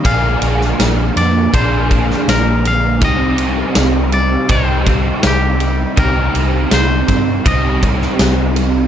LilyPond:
<<
  \new Staff \with { instrumentName = "Clean electric guitar" } { \time 4/4 \key c \minor \tempo 4 = 81 f''4. d''8 c''4 bes'8 f''8 | ees''4. d''8 c''4 g'4 | bes'4 c''4 ees''4. r8 | }
  \new Staff \with { instrumentName = "Overdriven electric guitar" } { \time 4/4 \key c \minor <bes, d f bes d' aes'>2 <bes, d f bes d' aes'>2 | <c g c' ees' g'>2 <c g c' ees' g'>2 | <c g c' ees' g'>2 <c g c' ees' g'>2 | }
  \new Staff \with { instrumentName = "Fingered electric bass" } { \clef bass \time 4/4 \key c \minor bes,,8 bes,,8 bes,,8 f,8 bes,,4 bes,,4 | c,4 c,4 c,4 c,4 | c,8 c,8 c,8 g,8 c,4 c,4 | }
  \new DrumStaff \with { instrumentName = "Drums" } \drummode { \time 4/4 <bd cymr>8 cymr16 sn16 <cymr sn>8 cymr8 <bd cymr>8 <bd cymr>16 sn16 <cymr sn>8 cymr8 | <bd cymr>8 cymr8 <cymr sn>8 cymr8 <bd cymr>8 <bd cymr>8 <cymr sn>8 cymr8 | <bd cymr>8 cymr8 <cymr sn>8 <bd cymr>8 <bd cymr>8 <bd cymr>16 sn16 <cymr sn>8 cymr8 | }
>>